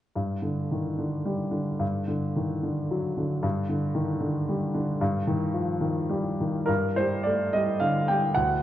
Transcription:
0.16 1.77 G2 soft
0.42 0.88 D3 soft
0.71 0.99 D#3 soft
0.98 1.43 D3 soft
1.25 1.70 G3 soft
1.51 1.80 D3 soft
1.79 3.39 G2 soft
2.08 2.52 D3 soft
2.36 2.64 D#3 soft
2.63 3.06 D3 soft
2.91 3.33 F#3 soft
3.17 3.44 D3 soft
3.43 4.96 G2 soft
3.69 4.11 D3 soft
3.94 4.21 D#3 soft
4.20 4.63 D3 soft
4.49 4.90 G3 soft
4.74 5.01 D3 soft
5.01 6.65 G2 soft
5.27 5.70 D#3 soft
5.54 5.81 F3 soft
5.81 6.27 D#3 soft
6.09 6.57 G3 soft
6.41 6.70 D#3 soft
6.66 8.31 G2 soft
6.66 6.96 A#4 medium
6.96 7.43 G3 soft
6.96 7.25 C5 medium
7.23 7.53 A3 soft
7.23 7.52 D5 soft
7.53 7.98 G3 soft
7.53 7.80 D#5 medium
7.80 8.25 D3 soft
7.80 8.08 F5 soft
8.08 8.36 G3 soft
8.08 8.36 G5 soft
8.35 8.62 D2 soft
8.35 8.62 F#5 medium

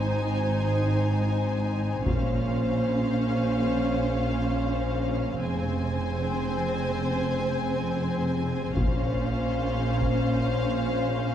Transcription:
0.00 2.02 G#1 soft
0.00 2.02 G#2 soft
0.00 2.02 C4 soft
0.00 2.02 D#4 soft
0.00 2.02 C5 soft
0.00 2.03 C5 soft
0.00 2.03 G#5 soft
2.05 5.37 A#1 medium
2.05 5.37 A#2 soft
2.05 6.21 C#3 soft
2.05 5.37 C#4 soft
2.05 5.36 C5 soft
2.05 5.23 C5 soft
2.05 5.38 F5 soft
2.05 taiko soft
5.40 8.72 F1 medium
5.40 8.73 F2 soft
5.40 8.72 C4 soft
5.40 8.71 G#4 soft
5.40 8.72 C5 soft
5.40 8.72 G#5 soft
6.23 8.75 C4 medium
8.75 11.35 A#1 medium
8.75 11.35 A#2 soft
8.75 11.35 C#4 soft
8.75 11.35 C5 soft
8.75 11.35 F5 soft
8.75 taiko medium
10.01 taiko soft

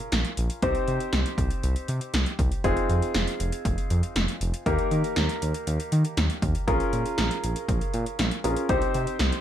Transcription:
0.00 0.59 C#4 medium
0.00 0.59 F4 medium
0.00 0.59 G#4 medium
0.00 0.59 A#4 medium
0.12 0.24 A#1 loud
0.12 snare loud
0.12 closed hi-hat medium
0.25 closed hi-hat soft
0.37 0.49 A#1 loud
0.37 closed hi-hat medium
0.50 closed hi-hat medium
0.62 0.74 C2 loud
0.62 2.60 C4 medium
0.62 2.60 D#4 medium
0.62 2.60 G4 medium
0.62 2.60 C5 medium
0.62 kick loud
0.62 closed hi-hat medium
0.75 closed hi-hat medium
0.88 0.99 C3 loud
0.88 closed hi-hat medium
1.00 closed hi-hat medium
1.13 1.25 C2 loud
1.13 snare loud
1.13 closed hi-hat medium
1.26 closed hi-hat medium
1.38 1.50 C2 medium
1.38 kick medium
1.38 closed hi-hat medium
1.51 closed hi-hat medium
1.63 1.75 C2 loud
1.63 closed hi-hat medium
1.76 closed hi-hat soft
1.88 2.00 C3 loud
1.88 closed hi-hat medium
2.01 closed hi-hat soft
2.14 2.25 C2 medium
2.14 snare loud
2.14 closed hi-hat medium
2.26 closed hi-hat soft
2.39 2.50 C2 loud
2.39 kick medium
2.39 closed hi-hat medium
2.52 closed hi-hat medium
2.64 2.76 F1 loud
2.64 4.62 C4 medium
2.64 4.62 D#4 medium
2.64 4.62 F4 medium
2.64 4.62 G#4 medium
2.64 kick loud
2.64 closed hi-hat medium
2.77 closed hi-hat medium
2.89 3.01 F2 loud
2.89 closed hi-hat medium
3.02 closed hi-hat soft
3.15 3.26 F1 loud
3.15 snare loud
3.15 closed hi-hat medium
3.27 closed hi-hat medium
3.40 3.51 F1 loud
3.40 closed hi-hat medium
3.52 closed hi-hat medium
3.65 3.77 F1 medium
3.65 kick medium
3.65 closed hi-hat medium
3.78 closed hi-hat medium
3.90 4.02 F2 loud
3.90 closed hi-hat medium
4.03 closed hi-hat soft
4.16 4.27 F1 medium
4.16 snare loud
4.16 closed hi-hat medium
4.28 closed hi-hat soft
4.41 4.52 F1 loud
4.41 closed hi-hat medium
4.54 closed hi-hat medium
4.66 4.78 D#2 loud
4.66 6.64 A#3 medium
4.66 6.64 D#4 medium
4.66 6.64 G4 medium
4.66 6.64 A#4 medium
4.66 kick loud
4.66 closed hi-hat medium
4.79 closed hi-hat medium
4.91 5.03 D#3 medium
4.91 closed hi-hat medium
5.04 closed hi-hat soft
5.16 5.28 D#2 loud
5.16 snare loud
5.16 closed hi-hat medium
5.29 closed hi-hat medium
5.42 5.53 D#2 medium
5.42 closed hi-hat medium
5.54 closed hi-hat medium
5.67 5.78 D#2 loud
5.67 closed hi-hat medium
5.80 closed hi-hat soft
5.92 6.04 D#3 loud
5.92 closed hi-hat medium
6.05 closed hi-hat medium
6.17 6.29 D#2 loud
6.17 snare loud
6.17 closed hi-hat medium
6.30 closed hi-hat medium
6.42 6.54 D#2 loud
6.42 kick medium
6.42 closed hi-hat medium
6.55 closed hi-hat medium
6.67 6.79 A#1 loud
6.67 8.41 C#4 medium
6.67 8.41 F4 medium
6.67 8.41 G#4 medium
6.67 8.41 A#4 medium
6.67 kick loud
6.67 closed hi-hat medium
6.80 closed hi-hat medium
6.93 7.04 A#2 loud
6.93 closed hi-hat medium
7.06 closed hi-hat soft
7.18 7.30 A#1 loud
7.18 snare loud
7.18 closed hi-hat medium
7.31 closed hi-hat medium
7.43 7.55 A#1 medium
7.43 closed hi-hat medium
7.56 closed hi-hat medium
7.69 7.80 A#1 loud
7.69 kick medium
7.69 closed hi-hat medium
7.81 closed hi-hat medium
7.94 8.05 A#2 loud
7.94 closed hi-hat medium
8.06 closed hi-hat soft
8.19 8.30 A#1 loud
8.19 snare loud
8.19 closed hi-hat medium
8.31 closed hi-hat soft
8.44 8.56 A#1 loud
8.44 8.69 C#4 medium
8.44 8.69 F4 medium
8.44 8.69 G#4 medium
8.44 8.69 A#4 medium
8.44 closed hi-hat medium
8.56 closed hi-hat medium
8.69 8.81 C2 loud
8.69 9.41 C4 medium
8.69 9.41 D#4 medium
8.69 9.41 G4 medium
8.69 9.41 C5 medium
8.69 kick loud
8.69 closed hi-hat medium
8.82 closed hi-hat medium
8.94 9.06 C3 medium
8.94 closed hi-hat medium
9.07 closed hi-hat medium
9.19 9.31 C2 loud
9.19 snare loud
9.19 closed hi-hat medium
9.32 closed hi-hat medium

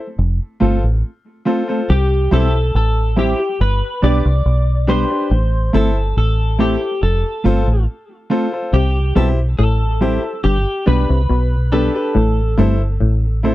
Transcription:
0.19 0.38 F1 medium
0.60 0.81 G1 medium
0.60 0.76 A3 medium
0.60 0.76 C4 medium
0.60 0.81 F4 medium
0.60 0.77 F4 medium
0.60 0.82 A4 medium
0.60 0.77 A4 medium
0.60 0.82 C5 medium
0.84 1.02 A1 medium
1.45 1.61 A3 medium
1.45 1.62 C4 medium
1.45 1.66 F4 medium
1.45 1.62 F4 medium
1.45 1.67 A4 medium
1.45 1.62 A4 medium
1.45 1.67 C5 medium
1.68 1.80 A3 medium
1.68 1.80 C4 medium
1.68 1.87 F4 medium
1.68 1.80 F4 medium
1.68 1.79 A4 medium
1.68 1.88 A4 medium
1.68 1.88 C5 medium
1.90 2.28 C2 loud
1.90 2.33 G4 medium
2.31 2.70 B1 medium
2.31 2.47 G3 medium
2.31 2.47 C4 medium
2.31 2.52 E4 medium
2.31 2.47 E4 medium
2.31 2.53 G4 medium
2.31 2.48 G4 medium
2.31 2.75 A4 medium
2.31 2.53 C5 loud
2.75 3.33 A1 medium
2.75 3.18 A4 medium
3.16 3.32 G3 medium
3.16 3.33 C4 medium
3.16 3.38 E4 medium
3.16 3.33 E4 medium
3.16 3.38 G4 medium
3.16 3.33 G4 medium
3.16 3.61 G4 medium
3.16 3.38 C5 medium
3.39 3.48 G4 soft
3.39 3.48 C5 soft
3.61 3.80 G1 medium
3.61 4.03 B4 medium
4.02 4.23 B1 medium
4.02 4.18 G3 medium
4.02 4.18 B3 medium
4.02 4.23 D4 medium
4.02 4.18 D4 medium
4.02 4.24 G4 medium
4.02 4.19 G4 loud
4.02 4.24 B4 medium
4.02 4.85 D5 loud
4.26 4.44 C2 medium
4.46 5.04 B1 medium
4.87 5.04 G3 medium
4.87 5.04 B3 medium
4.87 5.09 D4 medium
4.87 5.04 D4 medium
4.87 5.09 G4 medium
4.87 5.04 G4 medium
4.87 5.10 B4 loud
4.87 5.75 C5 medium
5.10 5.29 D4 medium
5.10 5.30 G4 medium
5.10 5.30 B4 medium
5.31 5.69 A1 loud
5.73 6.12 G1 medium
5.73 5.89 A3 medium
5.73 5.89 C4 medium
5.73 5.95 E4 medium
5.73 5.89 E4 medium
5.73 5.95 A4 medium
5.73 5.90 A4 medium
5.73 6.17 A4 medium
5.73 5.95 C5 loud
6.17 6.75 A1 medium
6.17 6.60 A4 medium
6.58 6.75 A3 medium
6.58 6.75 C4 medium
6.58 6.80 E4 medium
6.58 6.75 E4 medium
6.58 7.03 G4 medium
6.58 6.80 A4 medium
6.58 6.75 A4 loud
6.58 6.80 C5 medium
6.82 6.90 A4 soft
6.82 6.90 C5 soft
7.02 7.22 F1 loud
7.02 7.84 A4 medium
7.44 7.65 G1 medium
7.44 7.60 A3 medium
7.44 7.60 C4 medium
7.44 7.66 F4 medium
7.44 7.60 F4 medium
7.44 7.66 A4 medium
7.44 7.61 A4 medium
7.44 7.66 C5 loud
7.67 7.86 A1 medium
8.30 8.46 A3 medium
8.30 8.46 C4 medium
8.30 8.51 F4 medium
8.30 8.46 F4 medium
8.30 8.52 A4 medium
8.30 8.46 A4 medium
8.30 8.52 C5 medium
8.53 8.72 F4 medium
8.53 8.72 A4 medium
8.53 8.72 C5 medium
8.73 9.12 C2 loud
8.73 8.99 C3 medium
8.73 9.16 G4 medium
9.15 9.55 B1 medium
9.15 9.42 B2 medium
9.15 9.31 G3 loud
9.15 9.31 C4 medium
9.15 9.37 E4 medium
9.15 9.32 E4 medium
9.15 9.37 G4 medium
9.15 9.32 G4 loud
9.15 9.28 A4 medium
9.15 9.37 C5 loud
9.59 10.17 A1 medium
9.59 9.84 A2 medium
9.59 10.40 A4 medium
10.01 10.17 G3 medium
10.01 10.17 C4 medium
10.01 10.22 E4 medium
10.01 10.17 E4 medium
10.01 10.22 G4 medium
10.01 10.17 G4 medium
10.01 10.22 C5 loud
10.24 10.32 G4 soft
10.24 10.32 C5 soft
10.44 10.65 G1 loud
10.44 10.58 G2 medium
10.44 10.87 G4 medium
10.86 11.08 B1 medium
10.86 11.00 B2 medium
10.86 11.02 G3 medium
10.86 11.03 B3 medium
10.86 11.08 D4 medium
10.86 11.03 D4 medium
10.86 11.08 G4 medium
10.86 11.03 G4 medium
10.86 11.08 B4 medium
10.86 11.72 B4 loud
11.09 11.28 C2 medium
11.09 11.22 C3 medium
11.30 11.89 B1 medium
11.30 11.55 B2 medium
11.72 11.88 G3 medium
11.72 11.89 B3 medium
11.72 11.93 D4 medium
11.72 11.89 D4 medium
11.72 11.94 G4 medium
11.72 11.89 G4 medium
11.72 13.40 A4 medium
11.72 11.94 B4 loud
11.94 12.14 D4 medium
11.94 12.14 G4 medium
11.94 12.14 B4 medium
12.15 12.54 A1 loud
12.15 12.41 A2 medium
12.58 12.97 G1 medium
12.58 12.84 G2 medium
12.58 12.74 A3 medium
12.58 12.74 C4 medium
12.58 12.79 E4 loud
12.58 12.74 E4 medium
12.58 12.79 A4 medium
12.58 12.74 A4 loud
12.58 12.80 C5 loud
13.01 13.55 A1 medium
13.01 13.26 A2 medium
13.43 13.55 A3 medium
13.43 13.55 C4 medium
13.43 13.55 E4 medium
13.43 13.55 A4 medium
13.43 13.55 C5 medium

